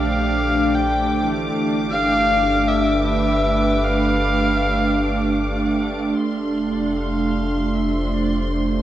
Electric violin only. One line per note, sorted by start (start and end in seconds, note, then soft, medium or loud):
0.00 0.77 F5 medium
0.76 1.33 G5 medium
1.91 2.70 F5 loud
2.68 3.05 E5 loud
3.06 3.85 E5 loud
3.84 5.79 F5 loud
6.18 6.98 D5 medium
6.97 7.76 F5 medium
7.75 8.15 E5 medium
8.14 8.54 D5 medium
8.53 8.82 C5 medium